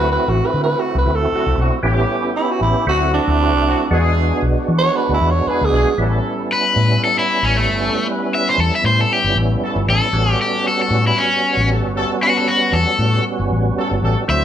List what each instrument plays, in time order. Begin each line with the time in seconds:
Already playing: fingered electric bass D2, horn section F#3 C4 D4 F#4, tonewheel organ A3 C4 E4 F#4, tenor saxophone B4
0.12 tenor saxophone B4
0.28 fingered electric bass A1, tenor saxophone F#4
0.46 tenor saxophone B4
0.54 fingered electric bass D3
0.64 tenor saxophone B4
0.80 tenor saxophone F#4
0.95 fingered electric bass C2, tenor saxophone B4
1.06 fingered electric bass D2
1.15 tenor saxophone A4
1.31 horn section F#3 C4 D4 F#4, muted fingered electric bass stroke
1.46 fingered electric bass C2
1.58 fingered electric bass B1, horn section F#3 C4 D4 F#4
1.83 fingered electric bass A1, horn section G3 A3 C#4 G4, tonewheel organ B3 C#4 E4 G4
2.36 tenor saxophone E4
2.51 tenor saxophone F#4
2.61 fingered electric bass A1, tenor saxophone E4
2.87 fingered electric bass D2, horn section F#3 C4 D4 F#4, tonewheel organ A3 C4 E4 F#4, tenor saxophone F#4
3.14 tenor saxophone D4
3.27 fingered electric bass D2
3.39 horn section F#3 C4 D4 F#4
3.53 fingered electric bass C2
3.65 horn section F#3 C4 D4 F#4
3.91 fingered electric bass E2, tonewheel organ G#3 B3 D4 F#4, horn section G#3 D4 E4 G#4
4.42 fingered electric bass B1
4.68 fingered electric bass E3
4.78 tenor saxophone C#5
4.96 tenor saxophone B4
5.09 fingered electric bass D2
5.14 tenor saxophone E4
5.21 fingered electric bass E2
5.31 tenor saxophone C#5
5.46 horn section G#3 D4 E4 G#4, tenor saxophone B4, muted fingered electric bass stroke
5.61 fingered electric bass D2, tenor saxophone G#4
5.72 fingered electric bass B1, horn section G#3 D4 E4 G#4
5.98 fingered electric bass A1, tonewheel organ G3 B3 C#4 E4, horn section A3 C#4 G4 A4
6.53 overdriven electric guitar B4
6.76 fingered electric bass A2
7.04 overdriven electric guitar A4
7.19 overdriven electric guitar E4
7.43 fingered electric bass A1, overdriven electric guitar C#4
7.54 horn section A3 C#4 G4 A4, overdriven electric guitar A3
7.69 fingered electric bass G1
7.79 horn section A3 C#4 G4 A4
8.06 horn section B3 C#4 G4 B4
8.35 overdriven electric guitar E5
8.49 overdriven electric guitar C5
8.58 fingered electric bass E2, overdriven electric guitar A4
8.75 overdriven electric guitar E5
8.84 fingered electric bass A2, overdriven electric guitar C5
9.01 overdriven electric guitar A4
9.13 overdriven electric guitar G4
9.24 fingered electric bass G1
9.36 fingered electric bass A1
9.61 horn section A3 C#4 G4 A4, muted fingered electric bass stroke
9.76 fingered electric bass G1
9.87 fingered electric bass A1, horn section A3 C#4 G4 A4, overdriven electric guitar A4
10.13 fingered electric bass A1, tonewheel organ G3 B3 C#4 F#4, horn section A3 C#4 A4
10.42 overdriven electric guitar G4
10.68 overdriven electric guitar A4
10.82 overdriven electric guitar A4
10.91 fingered electric bass A2
11.07 overdriven electric guitar E4
11.18 overdriven electric guitar C#4
11.57 fingered electric bass A1
11.69 horn section A3 C#4 G4 A4
11.83 fingered electric bass G1
11.95 horn section A3 C#4 G4 A4
12.21 horn section B3 C#4 B4, overdriven electric guitar F#4
12.37 overdriven electric guitar A4
12.48 overdriven electric guitar F#4
12.73 fingered electric bass E2, overdriven electric guitar A4
12.99 fingered electric bass A2
13.39 fingered electric bass G1
13.51 fingered electric bass A1
13.76 horn section A3 C#4 G4 A4
13.91 fingered electric bass G1
14.02 fingered electric bass A1, horn section A3 C#4 G4 A4
14.28 fingered electric bass D2, tonewheel organ F#3 A3 C4 E4, horn section C4 D4 F#4 C5, overdriven electric guitar E5